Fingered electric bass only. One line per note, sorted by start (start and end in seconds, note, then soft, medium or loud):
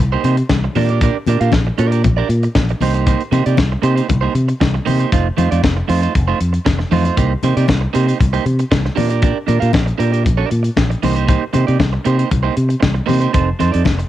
0.00 0.16 C2 loud
0.24 0.41 C3 loud
0.50 0.67 C2 loud
0.75 1.09 A#2 medium
1.27 1.36 A#2 medium
1.41 1.49 A#2 medium
1.53 1.70 A#1 medium
1.79 2.06 A#2 medium
2.04 2.21 A#1 loud
2.29 2.46 A#2 loud
2.56 2.73 A#1 loud
2.80 3.14 C2 medium
3.32 3.41 C3 medium
3.46 3.54 C3 medium
3.58 3.75 C2 loud
3.83 4.00 C3 loud
4.10 4.27 C2 loud
4.35 4.52 C3 medium
4.61 4.78 C2 loud
4.87 5.04 C3 medium
5.13 5.29 F1 loud
5.38 5.47 F2 medium
5.52 5.60 F2 medium
5.64 5.81 F1 loud
5.89 6.06 F2 loud
6.15 6.32 F1 loud
6.41 6.58 F2 medium
6.66 6.83 F1 medium
6.92 7.09 F2 loud
7.18 7.35 C2 loud
7.44 7.53 C3 medium
7.57 7.65 C3 loud
7.69 7.86 C2 loud
7.95 8.12 C3 loud
8.21 8.38 C2 loud
8.46 8.63 C3 medium
8.71 8.89 C2 loud
8.97 9.31 A#2 medium
9.49 9.58 A#2 medium
9.62 9.70 A#2 medium
9.74 9.91 A#1 loud
10.00 10.28 A#2 medium
10.26 10.43 A#1 loud
10.52 10.69 A#2 medium
10.77 10.94 A#1 loud
11.03 11.37 C2 medium
11.55 11.64 C3 medium
11.68 11.76 C3 medium
11.80 11.97 C2 medium
12.06 12.23 C3 medium
12.32 12.49 C2 loud
12.57 12.74 C3 medium
12.83 13.00 C2 loud
13.09 13.26 C3 loud
13.34 13.51 F1 loud
13.61 13.70 F2 medium
13.75 13.82 F2 medium
13.86 14.03 F1 medium